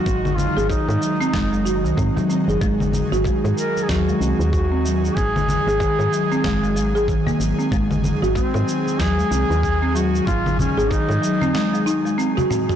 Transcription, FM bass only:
X:1
M:4/4
L:1/16
Q:"Swing 16ths" 1/4=94
K:Abmix
V:1 name="FM bass" clef=bass
A,,,3 A,,, z A,, z2 G,,,3 C,, A,, z2 G,,, | A,,,3 A,,, z A,, z2 E,, z C,, E,,4- E,, | A,,,3 A,,, z A,, z2 G,,,2 A,,,4 A,,, z | A,,,3 A,,, z A,, z2 E,, z C,, E,,4- E,, |
A,,,3 A,,, z A,, z8 z2 |]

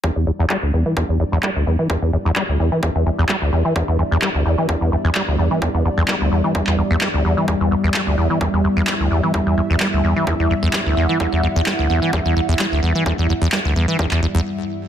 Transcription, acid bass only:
X:1
M:4/4
L:1/16
Q:"Swing 16ths" 1/4=129
K:Em
V:1 name="Acid bass" clef=bass
E,, E,, E,, E,, G, D,, E,, E, E,, E,, E,, E,, G, D,, E,, E, | E,, E,, E,, E,, G, D,, E,, E, E,, E,, E,, E,, G, D,, E,, E, | E,, E,, E,, E,, G, D,, E,, E, E,, E,, E,, E,, G, D,, E,, E, | E,, E,, E,, E,, G, D,, E,, E, E,, E,, E,, E,, G, D,, E,, E, |
E,, E,, E,, E,, G, D,, E,, E, E,, E,, E,, E,, G, D,, E,, E, | E,, E,, E,, E,, G, D,, E,, E, E,, E,, E,, E,, G, D,, E,, E, | E,, E,, E,, E,, G, D,, E,, E, E,, E,, E,, E,, G, D,, E,, E, | E,, E,, E,, E,, G, D,, E,, E, E,, E,, E,, E,, z4 |]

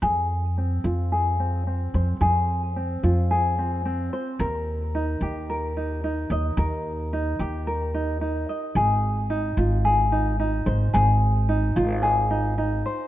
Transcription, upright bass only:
X:1
M:4/4
L:1/8
Q:"Swing 16ths" 1/4=110
K:Fm
V:1 name="Upright bass" clef=bass
F,,3 F,,4 F,, | F,,3 F,,4 z | E,,3 E,,4 E,, | E,,3 E,,4 z |
A,,,3 A,,,4 A,,, | A,,,3 A,,,4 z |]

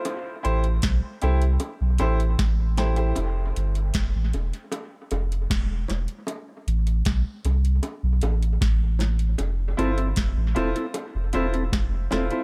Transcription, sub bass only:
X:1
M:4/4
L:1/16
Q:1/4=77
K:Flyd
V:1 name="Sub bass" clef=bass
z2 A,,,2 B,,, z C,,2 z B,,, A,,,2 A,,,4 | F,,,2 G,,,2 F,,, A,,, E,,, z3 F,,,2 E,,,2 E,,, z | z2 A,,,2 B,,, z C,,2 z B,,, A,,,2 A,,,4 | F,,,2 G,,,2 F,,, A,,, E,,, z2 F,,, E,,,2 F,,,2 E,,, z |]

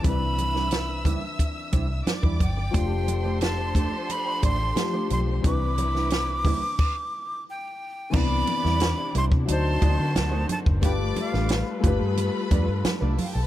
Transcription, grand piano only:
X:1
M:4/4
L:1/8
Q:1/4=89
K:C
V:1 name="Grand piano"
[E,CDB]8 | [F,A,DFG]6 [F,A,DG]2 | [E,CDB]4 z4 | [E,B,CD]4 [^F,D_Ec]4 |
[A,FGB]3 [A,FGB]4- [A,FGB] |]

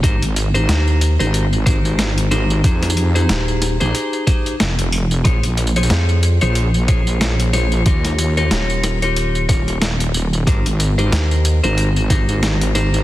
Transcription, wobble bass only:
X:1
M:4/4
L:1/16
Q:"Swing 16ths" 1/4=92
K:Ab
V:1 name="Wobble bass" clef=bass
A,,, A,,,3 z3 A,,,3 A,,,6 | F,,4 z3 B,,, z4 F,,,4 | B,,, B,,,3 z3 B,,,3 B,,,6 | E,,4 z6 E,,,6 |
A,,, A,,,3 z3 A,,,3 A,,,6 |]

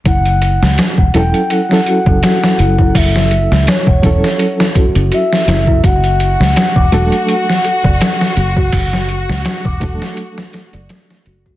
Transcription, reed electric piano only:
X:1
M:4/4
L:1/16
Q:"Swing 16ths" 1/4=83
K:F#m
V:1 name="Reed electric piano"
z6 [F,CEA]3 [F,CEA]6- [F,CEA]- | [F,CEA]6 [F,CEA]8- [F,CEA]2 | z6 [F,A,DA]3 z6 z | z6 [F,A,DA]8- [F,A,DA]2 |]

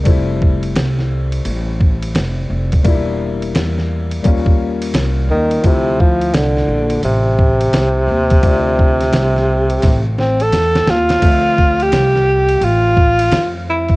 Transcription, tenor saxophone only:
X:1
M:4/4
L:1/16
Q:"Swing 16ths" 1/4=86
K:Dm
V:1 name="Tenor saxophone"
z16 | z12 z2 _E,2 | C,2 F,2 D,4 C,8- | C,8- C,2 C A3 F2- |
F3 G4- G F6 E2 |]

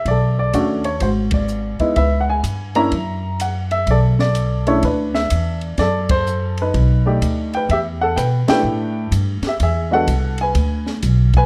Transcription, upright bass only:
X:1
M:4/4
L:1/8
Q:"Swing" 1/4=126
K:Bm
V:1 name="Upright bass" clef=bass
B,,,2 ^D,,2 ^G,,,3 z | C,,2 G,,2 F,,4 | B,,,4 D,,2 E,,2 | F,,4 B,,,2 D,,2 |
[K:Em] E,,2 B,, z A,,2 G,, z | E,,2 C,,2 D,,2 B,,,2 |]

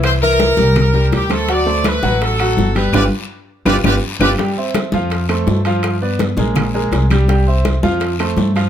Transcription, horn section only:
X:1
M:4/4
L:1/8
Q:1/4=166
K:C
V:1 name="Horn section"
c _B4- B G A | d2 B2 A3 B | [GBd] z3 [GBd] [GBd] z [GBd] | z8 |
z8 | z8 |]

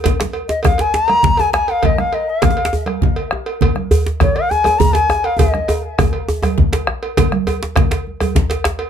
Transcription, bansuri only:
X:1
M:12/8
L:1/8
Q:3/8=135
K:Fphr
V:1 name="Bansuri"
z3 e f a b3 a a f | e f e f3 z6 | z4 d f a2 b a2 f | e2 z8 z2 |
z12 |]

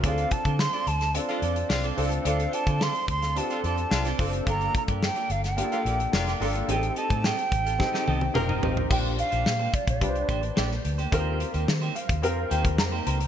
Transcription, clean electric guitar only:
X:1
M:4/4
L:1/16
Q:1/4=108
K:Bb
V:1 name="Clean electric guitar"
[CFAd]2 z [CFAd] z [CFAd] z3 [CFAf] [CFAd] z2 [CFAd] [CFAd] z | [CFAd] z [CFAd] [CFAd] [CFAd] z2 [CFAf] z [CFAd] [CFAd] z2 [CFAd] [CFAd] z | [B,FGd]2 z [B,FGd] z [B,FGd] z3 [B,FGf] [B,FGd] z2 [B,FGd] [B,FGd] z | [CGAe] z [CGAe] [CGAe] [CGAe] z2 [CGAf] z [CGAe] [CGAe] z2 [CFBe] [CFBe] z |
[B,DGc]2 z [B,DGc] z [B,DGc] z4 [B,DGc] z [B,DGd] z2 [B,DGc] | [B,EGc]2 z [B,EGc] z [B,EGc] z4 [B,EGc] z2 [B,EGc] [B,EGc] z |]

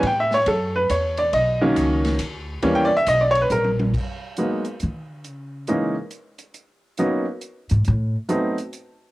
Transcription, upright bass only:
X:1
M:3/4
L:1/8
Q:"Swing" 1/4=138
K:B
V:1 name="Upright bass" clef=bass
=A,,2 F,,2 E,,2 | B,,,2 C,,2 =D,,2 | D,,2 B,,,2 A,,,2 | z4 D, =D, |
C,3 z3 | z4 z G,, | =A,, z4 z |]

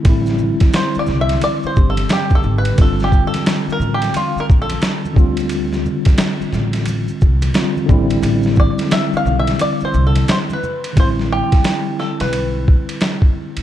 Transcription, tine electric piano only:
X:1
M:4/4
L:1/8
Q:"Swing 16ths" 1/4=88
K:Am
V:1 name="Tine electric piano"
[D,G,CE]4- [D,G,CE] [D,G,CG]3 | [D,G,CF]6- [D,G,CF] [D,G,CF]- | [D,G,CF]6 [D,G,CF] [D,G,CE]- | [D,G,CE]6- [D,G,CE] z |
[D,G,CE]8 |]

